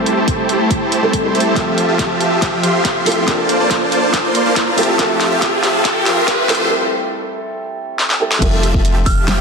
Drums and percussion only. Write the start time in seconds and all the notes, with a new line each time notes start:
0.06 closed hi-hat
0.28 kick, closed hi-hat
0.49 closed hi-hat
0.71 kick, closed hi-hat
0.92 closed hi-hat
1.13 kick, closed hi-hat
1.35 closed hi-hat
1.40 closed hi-hat
1.56 kick, snare, closed hi-hat
1.78 closed hi-hat
1.99 kick, snare, closed hi-hat
2.21 closed hi-hat
2.42 kick, snare, closed hi-hat
2.63 closed hi-hat
2.85 kick, snare, closed hi-hat
3.06 open hi-hat
3.12 closed hi-hat
3.28 kick, snare, closed hi-hat
3.49 closed hi-hat
3.70 kick, snare, closed hi-hat
3.92 closed hi-hat
4.13 kick, snare, closed hi-hat
4.35 closed hi-hat
4.56 kick, snare, closed hi-hat
4.78 open hi-hat
4.83 closed hi-hat
4.99 kick, snare, closed hi-hat
5.20 snare, closed hi-hat
5.42 kick, snare, closed hi-hat
5.63 snare, closed hi-hat
5.85 kick, snare, closed hi-hat
6.06 snare, closed hi-hat
6.28 kick, snare, closed hi-hat
6.49 snare, open hi-hat
6.55 closed hi-hat
7.99 snare
8.10 snare
8.31 snare
8.42 kick, closed hi-hat, crash
8.63 closed hi-hat
8.74 kick
8.85 closed hi-hat
9.06 kick, open hi-hat
9.28 snare, closed hi-hat